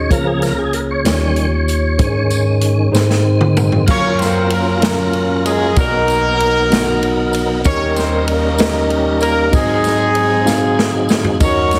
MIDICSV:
0, 0, Header, 1, 5, 480
1, 0, Start_track
1, 0, Tempo, 627615
1, 83, Time_signature, 6, 3, 24, 8
1, 9021, End_track
2, 0, Start_track
2, 0, Title_t, "Horn section"
2, 0, Program_c, 0, 61
2, 2982, Note_on_c, 0, 61, 114
2, 2982, Note_on_c, 0, 73, 124
2, 2985, Note_on_c, 0, 65, 90
2, 2986, Note_on_c, 0, 70, 87
2, 3199, Note_off_c, 0, 61, 0
2, 3199, Note_off_c, 0, 73, 0
2, 3210, Note_on_c, 0, 60, 95
2, 3210, Note_on_c, 0, 72, 104
2, 3450, Note_off_c, 0, 60, 0
2, 3450, Note_off_c, 0, 72, 0
2, 3451, Note_off_c, 0, 65, 0
2, 3456, Note_off_c, 0, 70, 0
2, 3460, Note_on_c, 0, 65, 69
2, 3465, Note_on_c, 0, 58, 80
2, 3465, Note_on_c, 0, 61, 68
2, 3465, Note_on_c, 0, 70, 87
2, 3938, Note_off_c, 0, 58, 0
2, 3938, Note_off_c, 0, 70, 0
2, 4145, Note_off_c, 0, 65, 0
2, 4148, Note_off_c, 0, 61, 0
2, 4168, Note_on_c, 0, 56, 93
2, 4168, Note_on_c, 0, 68, 101
2, 4393, Note_off_c, 0, 56, 0
2, 4393, Note_off_c, 0, 68, 0
2, 4423, Note_on_c, 0, 58, 113
2, 4423, Note_on_c, 0, 70, 123
2, 4425, Note_on_c, 0, 63, 92
2, 4427, Note_on_c, 0, 66, 92
2, 5588, Note_off_c, 0, 63, 0
2, 5589, Note_off_c, 0, 66, 0
2, 5617, Note_off_c, 0, 58, 0
2, 5617, Note_off_c, 0, 70, 0
2, 5855, Note_on_c, 0, 67, 93
2, 5857, Note_on_c, 0, 61, 117
2, 5857, Note_on_c, 0, 70, 81
2, 5857, Note_on_c, 0, 73, 127
2, 6077, Note_off_c, 0, 61, 0
2, 6077, Note_off_c, 0, 73, 0
2, 6085, Note_on_c, 0, 60, 95
2, 6085, Note_on_c, 0, 72, 104
2, 6303, Note_off_c, 0, 70, 0
2, 6312, Note_on_c, 0, 58, 78
2, 6312, Note_on_c, 0, 70, 85
2, 6328, Note_off_c, 0, 60, 0
2, 6328, Note_off_c, 0, 72, 0
2, 6331, Note_off_c, 0, 67, 0
2, 6341, Note_on_c, 0, 55, 65
2, 6341, Note_on_c, 0, 67, 71
2, 6344, Note_on_c, 0, 61, 72
2, 6801, Note_off_c, 0, 58, 0
2, 6801, Note_off_c, 0, 70, 0
2, 7025, Note_off_c, 0, 55, 0
2, 7025, Note_off_c, 0, 67, 0
2, 7026, Note_off_c, 0, 61, 0
2, 7051, Note_on_c, 0, 58, 99
2, 7051, Note_on_c, 0, 70, 108
2, 7274, Note_off_c, 0, 58, 0
2, 7274, Note_off_c, 0, 70, 0
2, 7295, Note_on_c, 0, 56, 103
2, 7295, Note_on_c, 0, 68, 112
2, 7297, Note_on_c, 0, 60, 85
2, 7302, Note_on_c, 0, 63, 92
2, 8460, Note_off_c, 0, 56, 0
2, 8460, Note_off_c, 0, 68, 0
2, 8461, Note_off_c, 0, 60, 0
2, 8463, Note_off_c, 0, 63, 0
2, 8738, Note_on_c, 0, 61, 101
2, 8738, Note_on_c, 0, 73, 110
2, 8742, Note_on_c, 0, 66, 88
2, 8747, Note_on_c, 0, 70, 79
2, 9021, Note_off_c, 0, 61, 0
2, 9021, Note_off_c, 0, 66, 0
2, 9021, Note_off_c, 0, 70, 0
2, 9021, Note_off_c, 0, 73, 0
2, 9021, End_track
3, 0, Start_track
3, 0, Title_t, "Tine electric piano"
3, 0, Program_c, 1, 4
3, 0, Control_c, 1, 64, 127
3, 0, Note_on_c, 1, 39, 57
3, 0, Note_on_c, 1, 51, 59
3, 0, Note_on_c, 1, 61, 67
3, 0, Note_on_c, 1, 63, 56
3, 0, Note_on_c, 1, 66, 60
3, 0, Note_on_c, 1, 68, 57
3, 0, Note_on_c, 1, 73, 64
3, 0, Note_on_c, 1, 75, 76
3, 74, Note_on_c, 1, 58, 61
3, 79, Note_off_c, 1, 61, 0
3, 79, Note_on_c, 1, 61, 62
3, 80, Note_on_c, 1, 65, 58
3, 82, Note_off_c, 1, 68, 0
3, 82, Note_on_c, 1, 68, 62
3, 83, Note_on_c, 1, 49, 55
3, 84, Note_on_c, 1, 37, 49
3, 85, Note_off_c, 1, 73, 0
3, 85, Note_on_c, 1, 73, 75
3, 92, Control_c, 1, 64, 0
3, 93, Note_off_c, 1, 75, 0
3, 96, Note_off_c, 1, 51, 0
3, 97, Note_off_c, 1, 39, 0
3, 97, Note_off_c, 1, 66, 0
3, 98, Note_off_c, 1, 63, 0
3, 220, Control_c, 1, 64, 127
3, 685, Note_off_c, 1, 58, 0
3, 687, Note_off_c, 1, 61, 0
3, 688, Note_off_c, 1, 65, 0
3, 689, Note_off_c, 1, 68, 0
3, 691, Note_off_c, 1, 73, 0
3, 774, Note_off_c, 1, 49, 0
3, 775, Note_off_c, 1, 37, 0
3, 798, Note_on_c, 1, 58, 62
3, 800, Note_on_c, 1, 63, 62
3, 801, Note_on_c, 1, 39, 70
3, 805, Note_on_c, 1, 51, 66
3, 805, Note_on_c, 1, 65, 64
3, 805, Note_on_c, 1, 67, 65
3, 807, Note_on_c, 1, 73, 77
3, 815, Control_c, 1, 64, 0
3, 943, Control_c, 1, 64, 127
3, 1408, Note_off_c, 1, 58, 0
3, 1409, Note_off_c, 1, 63, 0
3, 1411, Note_off_c, 1, 65, 0
3, 1412, Note_off_c, 1, 67, 0
3, 1413, Note_off_c, 1, 73, 0
3, 1494, Note_off_c, 1, 39, 0
3, 1496, Note_off_c, 1, 51, 0
3, 1520, Note_on_c, 1, 63, 81
3, 1529, Note_on_c, 1, 44, 63
3, 1529, Note_on_c, 1, 68, 69
3, 1533, Note_on_c, 1, 72, 69
3, 1538, Control_c, 1, 64, 0
3, 1580, Note_off_c, 1, 72, 0
3, 1582, Note_on_c, 1, 73, 87
3, 1647, Control_c, 1, 64, 127
3, 2129, Note_off_c, 1, 63, 0
3, 2134, Note_off_c, 1, 68, 0
3, 2160, Note_off_c, 1, 73, 0
3, 2219, Note_off_c, 1, 44, 0
3, 2232, Note_on_c, 1, 63, 83
3, 2236, Note_on_c, 1, 68, 75
3, 2237, Note_on_c, 1, 44, 74
3, 2242, Note_on_c, 1, 72, 94
3, 2258, Control_c, 1, 64, 0
3, 2383, Control_c, 1, 64, 127
3, 2846, Note_off_c, 1, 63, 0
3, 2848, Note_off_c, 1, 68, 0
3, 2851, Note_off_c, 1, 72, 0
3, 2933, Note_off_c, 1, 44, 0
3, 2962, Note_on_c, 1, 65, 64
3, 2966, Note_on_c, 1, 61, 65
3, 2968, Note_on_c, 1, 70, 57
3, 2970, Note_on_c, 1, 42, 54
3, 2971, Note_on_c, 1, 54, 60
3, 2974, Note_on_c, 1, 77, 79
3, 2979, Control_c, 1, 64, 0
3, 3095, Control_c, 1, 64, 127
3, 3572, Note_off_c, 1, 65, 0
3, 3573, Note_off_c, 1, 61, 0
3, 3574, Note_off_c, 1, 70, 0
3, 3576, Note_off_c, 1, 54, 0
3, 3577, Note_off_c, 1, 77, 0
3, 3684, Note_on_c, 1, 77, 60
3, 3687, Note_on_c, 1, 61, 71
3, 3693, Note_on_c, 1, 70, 67
3, 3694, Note_on_c, 1, 54, 63
3, 3698, Note_on_c, 1, 82, 85
3, 4293, Note_off_c, 1, 77, 0
3, 4294, Note_off_c, 1, 61, 0
3, 4297, Note_off_c, 1, 70, 0
3, 4298, Note_off_c, 1, 54, 0
3, 4300, Note_off_c, 1, 82, 0
3, 4381, Note_off_c, 1, 42, 0
3, 4410, Note_on_c, 1, 59, 66
3, 4410, Note_on_c, 1, 63, 60
3, 4416, Note_on_c, 1, 47, 54
3, 4416, Note_on_c, 1, 66, 69
3, 4417, Note_on_c, 1, 35, 63
3, 4418, Note_on_c, 1, 74, 68
3, 4421, Control_c, 1, 64, 0
3, 4464, Note_off_c, 1, 74, 0
3, 4472, Note_on_c, 1, 75, 75
3, 4567, Control_c, 1, 64, 127
3, 5016, Note_off_c, 1, 59, 0
3, 5016, Note_off_c, 1, 63, 0
3, 5019, Note_off_c, 1, 66, 0
3, 5047, Note_off_c, 1, 75, 0
3, 5124, Note_on_c, 1, 59, 95
3, 5129, Note_on_c, 1, 63, 78
3, 5130, Note_on_c, 1, 66, 80
3, 5133, Note_on_c, 1, 70, 78
3, 5139, Note_on_c, 1, 78, 95
3, 5733, Note_off_c, 1, 59, 0
3, 5735, Note_off_c, 1, 63, 0
3, 5736, Note_off_c, 1, 66, 0
3, 5737, Note_off_c, 1, 70, 0
3, 5740, Note_off_c, 1, 78, 0
3, 5823, Note_off_c, 1, 47, 0
3, 5824, Note_off_c, 1, 35, 0
3, 5846, Note_on_c, 1, 61, 75
3, 5853, Note_on_c, 1, 51, 57
3, 5854, Note_on_c, 1, 63, 70
3, 5854, Note_on_c, 1, 65, 55
3, 5855, Note_on_c, 1, 39, 52
3, 5858, Note_on_c, 1, 70, 65
3, 5860, Note_on_c, 1, 75, 89
3, 5862, Control_c, 1, 64, 0
3, 5902, Note_off_c, 1, 65, 0
3, 5903, Note_on_c, 1, 67, 67
3, 5980, Control_c, 1, 64, 127
3, 6453, Note_off_c, 1, 61, 0
3, 6457, Note_off_c, 1, 63, 0
3, 6459, Note_off_c, 1, 70, 0
3, 6460, Note_off_c, 1, 75, 0
3, 6482, Note_off_c, 1, 67, 0
3, 6567, Note_on_c, 1, 61, 73
3, 6571, Note_on_c, 1, 63, 69
3, 6574, Note_on_c, 1, 70, 64
3, 6575, Note_on_c, 1, 67, 71
3, 6579, Note_on_c, 1, 75, 86
3, 7173, Note_off_c, 1, 61, 0
3, 7175, Note_off_c, 1, 63, 0
3, 7177, Note_off_c, 1, 70, 0
3, 7178, Note_off_c, 1, 67, 0
3, 7179, Note_off_c, 1, 75, 0
3, 7260, Note_off_c, 1, 51, 0
3, 7261, Note_off_c, 1, 39, 0
3, 7274, Note_on_c, 1, 60, 77
3, 7276, Note_on_c, 1, 63, 73
3, 7279, Note_on_c, 1, 44, 56
3, 7279, Note_on_c, 1, 66, 68
3, 7284, Note_on_c, 1, 75, 87
3, 7286, Note_on_c, 1, 68, 68
3, 7300, Control_c, 1, 64, 0
3, 7455, Control_c, 1, 64, 127
3, 7886, Note_off_c, 1, 60, 0
3, 7887, Note_off_c, 1, 63, 0
3, 7889, Note_off_c, 1, 66, 0
3, 7891, Note_off_c, 1, 75, 0
3, 7892, Note_off_c, 1, 68, 0
3, 7992, Note_on_c, 1, 60, 82
3, 7998, Note_on_c, 1, 63, 80
3, 7999, Note_on_c, 1, 66, 86
3, 8002, Note_on_c, 1, 68, 82
3, 8003, Note_on_c, 1, 77, 94
3, 8604, Note_off_c, 1, 60, 0
3, 8607, Note_off_c, 1, 63, 0
3, 8608, Note_off_c, 1, 66, 0
3, 8609, Note_off_c, 1, 68, 0
3, 8610, Note_off_c, 1, 77, 0
3, 8691, Note_off_c, 1, 44, 0
3, 8717, Note_on_c, 1, 61, 68
3, 8718, Note_on_c, 1, 63, 66
3, 8721, Note_on_c, 1, 66, 66
3, 8722, Note_on_c, 1, 51, 52
3, 8723, Note_on_c, 1, 39, 64
3, 8725, Note_on_c, 1, 75, 85
3, 8729, Note_on_c, 1, 70, 66
3, 8737, Control_c, 1, 64, 0
3, 8867, Control_c, 1, 64, 127
3, 9021, Note_off_c, 1, 39, 0
3, 9021, Note_off_c, 1, 51, 0
3, 9021, Note_off_c, 1, 61, 0
3, 9021, Note_off_c, 1, 63, 0
3, 9021, Note_off_c, 1, 66, 0
3, 9021, Note_off_c, 1, 70, 0
3, 9021, Note_off_c, 1, 75, 0
3, 9021, End_track
4, 0, Start_track
4, 0, Title_t, "Tonewheel organ"
4, 0, Program_c, 2, 16
4, 0, Note_on_c, 2, 73, 78
4, 78, Note_on_c, 2, 49, 54
4, 83, Note_on_c, 2, 53, 44
4, 86, Note_off_c, 2, 73, 0
4, 86, Note_on_c, 2, 58, 56
4, 89, Note_on_c, 2, 70, 80
4, 204, Note_on_c, 2, 68, 83
4, 210, Note_off_c, 2, 70, 0
4, 326, Note_on_c, 2, 70, 85
4, 328, Note_off_c, 2, 68, 0
4, 400, Note_off_c, 2, 49, 0
4, 403, Note_off_c, 2, 53, 0
4, 405, Note_off_c, 2, 58, 0
4, 448, Note_on_c, 2, 68, 74
4, 449, Note_off_c, 2, 70, 0
4, 563, Note_on_c, 2, 70, 92
4, 570, Note_off_c, 2, 68, 0
4, 618, Note_off_c, 2, 70, 0
4, 694, Note_on_c, 2, 73, 88
4, 803, Note_on_c, 2, 51, 44
4, 811, Note_on_c, 2, 55, 46
4, 820, Note_on_c, 2, 61, 52
4, 1124, Note_off_c, 2, 51, 0
4, 1128, Note_off_c, 2, 55, 0
4, 1133, Note_off_c, 2, 61, 0
4, 1516, Note_on_c, 2, 44, 51
4, 1518, Note_on_c, 2, 61, 50
4, 1519, Note_on_c, 2, 51, 43
4, 1862, Note_off_c, 2, 73, 0
4, 2212, Note_off_c, 2, 44, 0
4, 2213, Note_off_c, 2, 61, 0
4, 2214, Note_off_c, 2, 51, 0
4, 2249, Note_on_c, 2, 44, 52
4, 2253, Note_on_c, 2, 51, 47
4, 2256, Note_on_c, 2, 60, 54
4, 2939, Note_off_c, 2, 44, 0
4, 2941, Note_off_c, 2, 51, 0
4, 2943, Note_off_c, 2, 60, 0
4, 2956, Note_on_c, 2, 54, 61
4, 2956, Note_on_c, 2, 70, 67
4, 2959, Note_on_c, 2, 61, 56
4, 2961, Note_on_c, 2, 58, 50
4, 2961, Note_on_c, 2, 65, 58
4, 4375, Note_off_c, 2, 54, 0
4, 4375, Note_off_c, 2, 70, 0
4, 4377, Note_off_c, 2, 61, 0
4, 4378, Note_off_c, 2, 58, 0
4, 4378, Note_off_c, 2, 65, 0
4, 4407, Note_on_c, 2, 70, 64
4, 4408, Note_on_c, 2, 54, 61
4, 4411, Note_on_c, 2, 59, 56
4, 4413, Note_on_c, 2, 63, 57
4, 5821, Note_off_c, 2, 54, 0
4, 5821, Note_off_c, 2, 70, 0
4, 5823, Note_off_c, 2, 59, 0
4, 5823, Note_off_c, 2, 63, 0
4, 5852, Note_on_c, 2, 63, 61
4, 5855, Note_on_c, 2, 55, 58
4, 5855, Note_on_c, 2, 58, 58
4, 5857, Note_on_c, 2, 70, 71
4, 5858, Note_on_c, 2, 61, 62
4, 7262, Note_off_c, 2, 63, 0
4, 7263, Note_off_c, 2, 55, 0
4, 7263, Note_off_c, 2, 58, 0
4, 7265, Note_off_c, 2, 61, 0
4, 7265, Note_off_c, 2, 70, 0
4, 7293, Note_on_c, 2, 68, 69
4, 7295, Note_on_c, 2, 56, 60
4, 7296, Note_on_c, 2, 60, 56
4, 7297, Note_on_c, 2, 63, 57
4, 7300, Note_on_c, 2, 54, 64
4, 8700, Note_off_c, 2, 68, 0
4, 8701, Note_off_c, 2, 56, 0
4, 8702, Note_off_c, 2, 60, 0
4, 8702, Note_off_c, 2, 63, 0
4, 8704, Note_off_c, 2, 54, 0
4, 8724, Note_on_c, 2, 53, 53
4, 8727, Note_on_c, 2, 70, 70
4, 8729, Note_on_c, 2, 58, 55
4, 8729, Note_on_c, 2, 61, 57
4, 8731, Note_on_c, 2, 63, 52
4, 8774, Note_on_c, 2, 54, 56
4, 8776, Note_off_c, 2, 53, 0
4, 9021, Note_off_c, 2, 54, 0
4, 9021, Note_off_c, 2, 58, 0
4, 9021, Note_off_c, 2, 61, 0
4, 9021, Note_off_c, 2, 63, 0
4, 9021, Note_off_c, 2, 70, 0
4, 9021, End_track
5, 0, Start_track
5, 0, Title_t, "Drums"
5, 81, Note_on_c, 9, 36, 101
5, 82, Note_on_c, 9, 42, 83
5, 84, Note_on_c, 9, 54, 51
5, 158, Note_off_c, 9, 36, 0
5, 159, Note_off_c, 9, 42, 0
5, 160, Note_off_c, 9, 54, 0
5, 319, Note_on_c, 9, 42, 46
5, 329, Note_on_c, 9, 54, 51
5, 339, Note_on_c, 9, 38, 36
5, 396, Note_off_c, 9, 42, 0
5, 406, Note_off_c, 9, 54, 0
5, 416, Note_off_c, 9, 38, 0
5, 558, Note_on_c, 9, 42, 72
5, 634, Note_off_c, 9, 42, 0
5, 803, Note_on_c, 9, 42, 82
5, 811, Note_on_c, 9, 38, 95
5, 812, Note_on_c, 9, 54, 76
5, 880, Note_off_c, 9, 42, 0
5, 888, Note_off_c, 9, 38, 0
5, 889, Note_off_c, 9, 54, 0
5, 1040, Note_on_c, 9, 42, 45
5, 1117, Note_off_c, 9, 42, 0
5, 1286, Note_on_c, 9, 54, 46
5, 1291, Note_on_c, 9, 42, 70
5, 1362, Note_off_c, 9, 54, 0
5, 1367, Note_off_c, 9, 42, 0
5, 1520, Note_on_c, 9, 42, 76
5, 1524, Note_on_c, 9, 36, 111
5, 1524, Note_on_c, 9, 54, 45
5, 1596, Note_off_c, 9, 42, 0
5, 1600, Note_off_c, 9, 36, 0
5, 1600, Note_off_c, 9, 54, 0
5, 1760, Note_on_c, 9, 42, 47
5, 1765, Note_on_c, 9, 54, 55
5, 1837, Note_off_c, 9, 42, 0
5, 1841, Note_off_c, 9, 54, 0
5, 1997, Note_on_c, 9, 42, 75
5, 2074, Note_off_c, 9, 42, 0
5, 2253, Note_on_c, 9, 54, 76
5, 2254, Note_on_c, 9, 38, 57
5, 2329, Note_off_c, 9, 54, 0
5, 2331, Note_off_c, 9, 38, 0
5, 2373, Note_on_c, 9, 38, 56
5, 2450, Note_off_c, 9, 38, 0
5, 2606, Note_on_c, 9, 47, 66
5, 2682, Note_off_c, 9, 47, 0
5, 2728, Note_on_c, 9, 54, 49
5, 2729, Note_on_c, 9, 45, 85
5, 2805, Note_off_c, 9, 54, 0
5, 2806, Note_off_c, 9, 45, 0
5, 2845, Note_on_c, 9, 43, 82
5, 2922, Note_off_c, 9, 43, 0
5, 2963, Note_on_c, 9, 49, 96
5, 2968, Note_on_c, 9, 36, 123
5, 2974, Note_on_c, 9, 54, 50
5, 3039, Note_off_c, 9, 49, 0
5, 3045, Note_off_c, 9, 36, 0
5, 3051, Note_off_c, 9, 54, 0
5, 3203, Note_on_c, 9, 51, 41
5, 3223, Note_on_c, 9, 38, 35
5, 3228, Note_on_c, 9, 54, 56
5, 3280, Note_off_c, 9, 51, 0
5, 3300, Note_off_c, 9, 38, 0
5, 3304, Note_off_c, 9, 54, 0
5, 3443, Note_on_c, 9, 51, 65
5, 3520, Note_off_c, 9, 51, 0
5, 3686, Note_on_c, 9, 51, 70
5, 3694, Note_on_c, 9, 38, 107
5, 3706, Note_on_c, 9, 54, 87
5, 3762, Note_off_c, 9, 51, 0
5, 3770, Note_off_c, 9, 38, 0
5, 3783, Note_off_c, 9, 54, 0
5, 3924, Note_on_c, 9, 51, 37
5, 4001, Note_off_c, 9, 51, 0
5, 4172, Note_on_c, 9, 51, 60
5, 4176, Note_on_c, 9, 54, 50
5, 4248, Note_off_c, 9, 51, 0
5, 4253, Note_off_c, 9, 54, 0
5, 4407, Note_on_c, 9, 51, 66
5, 4411, Note_on_c, 9, 36, 110
5, 4422, Note_on_c, 9, 54, 50
5, 4484, Note_off_c, 9, 51, 0
5, 4488, Note_off_c, 9, 36, 0
5, 4498, Note_off_c, 9, 54, 0
5, 4649, Note_on_c, 9, 51, 42
5, 4664, Note_on_c, 9, 54, 55
5, 4725, Note_off_c, 9, 51, 0
5, 4740, Note_off_c, 9, 54, 0
5, 4896, Note_on_c, 9, 51, 66
5, 4973, Note_off_c, 9, 51, 0
5, 5137, Note_on_c, 9, 51, 67
5, 5145, Note_on_c, 9, 38, 109
5, 5150, Note_on_c, 9, 54, 74
5, 5213, Note_off_c, 9, 51, 0
5, 5221, Note_off_c, 9, 38, 0
5, 5226, Note_off_c, 9, 54, 0
5, 5373, Note_on_c, 9, 51, 43
5, 5449, Note_off_c, 9, 51, 0
5, 5606, Note_on_c, 9, 54, 52
5, 5616, Note_on_c, 9, 51, 57
5, 5682, Note_off_c, 9, 54, 0
5, 5693, Note_off_c, 9, 51, 0
5, 5846, Note_on_c, 9, 54, 52
5, 5853, Note_on_c, 9, 51, 68
5, 5854, Note_on_c, 9, 36, 115
5, 5923, Note_off_c, 9, 54, 0
5, 5930, Note_off_c, 9, 36, 0
5, 5930, Note_off_c, 9, 51, 0
5, 6089, Note_on_c, 9, 51, 43
5, 6092, Note_on_c, 9, 54, 61
5, 6109, Note_on_c, 9, 38, 36
5, 6166, Note_off_c, 9, 51, 0
5, 6169, Note_off_c, 9, 54, 0
5, 6185, Note_off_c, 9, 38, 0
5, 6329, Note_on_c, 9, 51, 65
5, 6405, Note_off_c, 9, 51, 0
5, 6565, Note_on_c, 9, 54, 84
5, 6572, Note_on_c, 9, 51, 66
5, 6580, Note_on_c, 9, 38, 117
5, 6642, Note_off_c, 9, 54, 0
5, 6648, Note_off_c, 9, 51, 0
5, 6656, Note_off_c, 9, 38, 0
5, 6808, Note_on_c, 9, 51, 40
5, 6884, Note_off_c, 9, 51, 0
5, 7041, Note_on_c, 9, 54, 48
5, 7055, Note_on_c, 9, 51, 58
5, 7118, Note_off_c, 9, 54, 0
5, 7132, Note_off_c, 9, 51, 0
5, 7287, Note_on_c, 9, 51, 76
5, 7290, Note_on_c, 9, 36, 127
5, 7291, Note_on_c, 9, 54, 51
5, 7364, Note_off_c, 9, 51, 0
5, 7367, Note_off_c, 9, 36, 0
5, 7367, Note_off_c, 9, 54, 0
5, 7524, Note_on_c, 9, 51, 45
5, 7531, Note_on_c, 9, 54, 62
5, 7544, Note_on_c, 9, 38, 39
5, 7601, Note_off_c, 9, 51, 0
5, 7607, Note_off_c, 9, 54, 0
5, 7620, Note_off_c, 9, 38, 0
5, 7762, Note_on_c, 9, 51, 62
5, 7838, Note_off_c, 9, 51, 0
5, 8008, Note_on_c, 9, 54, 78
5, 8011, Note_on_c, 9, 38, 57
5, 8084, Note_off_c, 9, 54, 0
5, 8088, Note_off_c, 9, 38, 0
5, 8252, Note_on_c, 9, 38, 87
5, 8328, Note_off_c, 9, 38, 0
5, 8480, Note_on_c, 9, 54, 58
5, 8492, Note_on_c, 9, 38, 99
5, 8557, Note_off_c, 9, 54, 0
5, 8569, Note_off_c, 9, 38, 0
5, 8599, Note_on_c, 9, 43, 86
5, 8676, Note_off_c, 9, 43, 0
5, 8721, Note_on_c, 9, 54, 56
5, 8722, Note_on_c, 9, 51, 74
5, 8724, Note_on_c, 9, 36, 111
5, 8797, Note_off_c, 9, 54, 0
5, 8798, Note_off_c, 9, 51, 0
5, 8800, Note_off_c, 9, 36, 0
5, 8956, Note_on_c, 9, 51, 39
5, 8968, Note_on_c, 9, 54, 56
5, 8976, Note_on_c, 9, 38, 37
5, 9021, Note_off_c, 9, 38, 0
5, 9021, Note_off_c, 9, 51, 0
5, 9021, Note_off_c, 9, 54, 0
5, 9021, End_track
0, 0, End_of_file